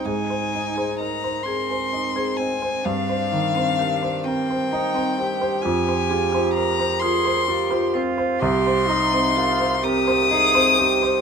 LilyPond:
<<
  \new Staff \with { instrumentName = "Violin" } { \time 6/8 \key c \minor \tempo 4. = 43 aes''4 bes''8 c'''4 aes''8 | f''4. g''4. | aes''4 bes''8 c'''4 r8 | c'''4. ees'''4. | }
  \new Staff \with { instrumentName = "Grand piano" } { \time 6/8 \key c \minor aes,16 c''16 ees'16 c''16 bes'16 c''16 bes'16 c''16 ees'16 c''16 c'16 c''16 | g,16 c''16 ees16 c''16 bes'16 c''16 bes'16 c''16 ees'16 c''16 c'16 c''16 | f,16 c''16 f'16 c''16 bes'16 c''16 bes'16 c''16 f'16 c''16 c'16 c''16 | c,16 c''16 ees'16 c''16 bes'16 c''16 bes'16 c''16 ees'16 c''16 c'16 c''16 | }
  \new Staff \with { instrumentName = "Marimba" } { \time 6/8 \key c \minor aes'16 r16 c''16 aes'16 ees''16 r16 aes'16 aes''16 aes''16 aes'16 ees''16 aes''16 | c'16 r16 ees'16 c'16 g'16 r16 c'16 c''16 c''16 c'16 g'16 c''16 | f'16 r16 aes'16 f'16 c''16 r16 f'16 f''16 f''16 f'16 c''16 f''16 | c'16 r16 ees'16 c'16 g'16 r16 c'16 c''16 c''16 c'16 g'16 c''16 | }
  \new Staff \with { instrumentName = "Cello" } { \time 6/8 \key c \minor ees'4. c'4. | d'4. c'8 ees'8 g'8~ | g'4. aes'8 g'8 f'8 | g'8 ees'8 f'8 g'8 aes'8 g'8 | }
>>